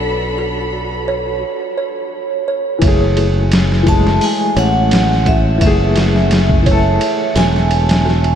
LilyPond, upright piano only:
\new Staff \with { instrumentName = "Upright piano" } { \time 4/4 \key fis \minor \tempo 4 = 86 <d b a'>2 r2 | <e a gis'>4. <e gis a>2~ <e gis a>8 | <e a gis'>4. <e a a'>2~ <e a a'>8 | }